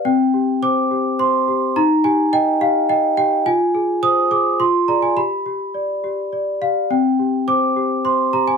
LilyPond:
\new Staff \with { instrumentName = "Celesta" } { \time 3/4 \key c \minor \tempo 4 = 105 << { g''4 d'''4 c'''4 | bes''8 aes''8 g''8 f''8 g''8 g''8 | aes''4 ees'''8 d'''8 c'''8 bes''16 aes''16 | b''2~ b''8 f''8 |
g''4 d'''4 c'''8 bes''16 aes''16 | } \\ { c'8 g'8 c''8 g'8 c''8 g'8 | ees'8 g'8 ees''8 g'8 ees''8 g'8 | f'8 aes'8 c''8 aes'8 f'8 <aes' d''>8 | g'8 g'8 d''8 g'8 d''8 g'8 |
c'8 g'8 c''8 g'8 c''8 g'8 | } >> }